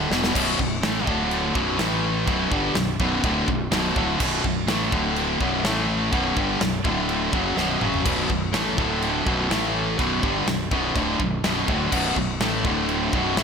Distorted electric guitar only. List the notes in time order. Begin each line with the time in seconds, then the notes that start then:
Already playing: A2 D3
0.10 E2 B2 E3
0.34 B1 F#2 B2
0.59 B1 F#2
0.83 A2 E3 A3
1.06 D2 A2 D3
1.55 B1 F#2 B2
1.78 A2 E3 A3
2.27 B1 F#2 B2
2.52 G2 D3 G3
2.76 B1 F#2
3.00 B1 F#2 B2
3.24 D2 A2 D3
3.49 B1 F#2
3.72 B1 F#2 B2
3.95 D2 A2 D3
4.20 B1 F#2 B2
4.44 B1 F#2
4.67 A2 E3 A3
4.92 D2 A2 D3
5.40 B1 F#2 B2
5.64 A2 E3 A3
6.12 B1 F#2 B2
6.36 G2 D3 G3
6.61 B1 F#2
6.84 D2 A2 D3
7.32 F#2 C#3 F#3
7.56 B1 F#2 B2
7.81 F#2 C#3 F#3
8.05 B1 F#2 B2
8.29 B1 F#2
8.53 A2 E3 A3
8.77 D2 A2 D3
9.26 B1 F#2 B2
9.50 A2 E3 A3
9.98 B1 F#2 B2
10.22 G2 D3 G3
10.47 B1 F#2
10.71 B1 F#2 B2
10.96 D2 A2 D3
11.20 B1 F#2
11.44 B1 F#2 B2
11.68 D2 A2 D3
11.92 B1 F#2 B2
12.17 B1 F#2
12.41 A2 E3 A3
12.65 D2 A2 D3
13.13 B1 F#2 B2
13.37 A2 E3 A3